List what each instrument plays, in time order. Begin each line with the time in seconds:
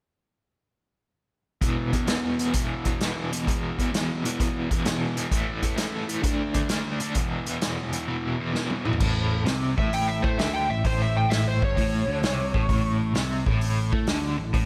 1.61 overdriven electric guitar E2 B2 E3, kick, closed hi-hat
1.93 overdriven electric guitar E2 B2 E3, kick, closed hi-hat
2.07 overdriven electric guitar E2 B2 E3, snare, closed hi-hat
2.39 overdriven electric guitar E2 B2 E3, closed hi-hat
2.54 overdriven electric guitar E2 B2 E3, kick, closed hi-hat
2.85 overdriven electric guitar E2 B2 E3, kick, closed hi-hat
3.01 overdriven electric guitar E2 B2 E3, snare, closed hi-hat
3.32 overdriven electric guitar E2 B2 E3, closed hi-hat
3.47 overdriven electric guitar E2 B2 E3, kick, closed hi-hat
3.78 overdriven electric guitar E2 B2 E3, kick, closed hi-hat
3.92 overdriven electric guitar E2 B2 E3, snare, closed hi-hat
4.24 overdriven electric guitar E2 B2 E3, closed hi-hat
4.39 overdriven electric guitar E2 B2 E3, kick, closed hi-hat
4.71 overdriven electric guitar E2 B2 E3, kick, closed hi-hat
4.85 overdriven electric guitar E2 B2 E3, snare, closed hi-hat
5.17 overdriven electric guitar E2 B2 E3, closed hi-hat
5.31 overdriven electric guitar A2 E3 A3, kick, closed hi-hat
5.63 overdriven electric guitar A2 E3 A3, kick, closed hi-hat
5.77 overdriven electric guitar A2 E3 A3, snare, closed hi-hat
6.08 overdriven electric guitar A2 E3 A3, closed hi-hat
6.22 overdriven electric guitar D3 A3 D4, kick, closed hi-hat
6.54 overdriven electric guitar D3 A3 D4, kick, closed hi-hat
6.69 overdriven electric guitar D3 A3 D4, snare, closed hi-hat
7.00 overdriven electric guitar D3 A3 D4, closed hi-hat
7.15 overdriven electric guitar E2 B2 E3, kick, closed hi-hat
7.46 overdriven electric guitar E2 B2 E3, closed hi-hat
7.62 overdriven electric guitar E2 B2 E3, snare, closed hi-hat
7.93 overdriven electric guitar E2 B2 E3, closed hi-hat
8.07 overdriven electric guitar E2 B2 E3
8.40 overdriven electric guitar E2 B2 E3
8.54 overdriven electric guitar E2 B2 E3, snare
8.70 high tom
8.85 overdriven electric guitar E2 B2 E3, mid tom
8.93 floor tom
9.00 picked electric bass A1, overdriven electric guitar A2, kick, crash
9.46 picked electric bass C2, overdriven electric guitar C3, snare, open hi-hat
9.77 picked electric bass A1, overdriven electric guitar A2, electric slide guitar E5, kick
9.93 electric slide guitar G5, open hi-hat
10.08 electric slide guitar E5
10.22 picked electric bass A2, overdriven electric guitar A3, electric slide guitar C5, kick
10.38 picked electric bass D2, overdriven electric guitar D3, electric slide guitar E5, snare, open hi-hat
10.54 electric slide guitar G5
10.70 picked electric bass A1, overdriven electric guitar A2, electric slide guitar E5
10.85 picked electric bass A1, overdriven electric guitar A2, electric slide guitar C5, kick, open hi-hat
11.02 electric slide guitar E5
11.17 electric slide guitar G5
11.30 electric slide guitar E5, snare, open hi-hat
11.48 electric slide guitar C5
11.62 picked electric bass G1, overdriven electric guitar G2, electric slide guitar C#5, kick
11.76 picked electric bass A1, overdriven electric guitar A2, kick, open hi-hat
12.07 picked electric bass D2, overdriven electric guitar D3
12.23 picked electric bass C2, overdriven electric guitar C3, snare, open hi-hat
12.54 picked electric bass A1, overdriven electric guitar A2, kick
12.68 picked electric bass A1, overdriven electric guitar A2, kick, open hi-hat
13.14 picked electric bass C2, overdriven electric guitar C3, snare, open hi-hat
13.46 picked electric bass A1, overdriven electric guitar A2, kick
13.61 open hi-hat
13.93 picked electric bass A2, overdriven electric guitar A3, kick
14.07 picked electric bass D2, overdriven electric guitar D3, snare, open hi-hat
14.38 picked electric bass A1, overdriven electric guitar A2
14.54 picked electric bass A1, overdriven electric guitar A2, kick, open hi-hat